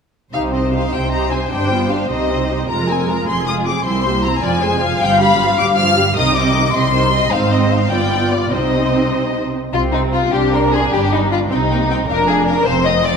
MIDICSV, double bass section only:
0, 0, Header, 1, 2, 480
1, 0, Start_track
1, 0, Key_signature, -3, "minor"
1, 0, Tempo, 391389
1, 413, Time_signature, 6, 3, 24, 8
1, 4250, Tempo, 385356
1, 9050, Tempo, 401875
1, 12890, Tempo, 386598
1, 16162, End_track
2, 0, Start_track
2, 0, Title_t, "Double bass section"
2, 0, Program_c, 0, 48
2, 414, Note_on_c, 0, 36, 44
2, 1054, Note_off_c, 0, 36, 0
2, 1140, Note_on_c, 0, 36, 42
2, 1781, Note_off_c, 0, 36, 0
2, 1863, Note_on_c, 0, 31, 46
2, 2496, Note_off_c, 0, 31, 0
2, 2579, Note_on_c, 0, 36, 39
2, 3211, Note_off_c, 0, 36, 0
2, 3298, Note_on_c, 0, 29, 45
2, 3928, Note_off_c, 0, 29, 0
2, 4010, Note_on_c, 0, 29, 44
2, 4646, Note_off_c, 0, 29, 0
2, 4727, Note_on_c, 0, 36, 52
2, 5363, Note_off_c, 0, 36, 0
2, 5452, Note_on_c, 0, 29, 46
2, 6084, Note_off_c, 0, 29, 0
2, 6171, Note_on_c, 0, 31, 57
2, 6803, Note_off_c, 0, 31, 0
2, 6888, Note_on_c, 0, 31, 57
2, 7524, Note_off_c, 0, 31, 0
2, 7610, Note_on_c, 0, 36, 56
2, 8246, Note_off_c, 0, 36, 0
2, 8331, Note_on_c, 0, 36, 57
2, 8966, Note_off_c, 0, 36, 0
2, 9054, Note_on_c, 0, 32, 51
2, 9713, Note_off_c, 0, 32, 0
2, 9759, Note_on_c, 0, 31, 49
2, 10480, Note_on_c, 0, 36, 42
2, 10484, Note_off_c, 0, 31, 0
2, 11700, Note_off_c, 0, 36, 0
2, 11934, Note_on_c, 0, 36, 49
2, 12566, Note_off_c, 0, 36, 0
2, 12647, Note_on_c, 0, 36, 45
2, 13288, Note_off_c, 0, 36, 0
2, 13375, Note_on_c, 0, 31, 48
2, 14011, Note_off_c, 0, 31, 0
2, 14095, Note_on_c, 0, 36, 51
2, 14732, Note_off_c, 0, 36, 0
2, 14815, Note_on_c, 0, 29, 56
2, 15448, Note_off_c, 0, 29, 0
2, 15531, Note_on_c, 0, 29, 53
2, 16162, Note_off_c, 0, 29, 0
2, 16162, End_track
0, 0, End_of_file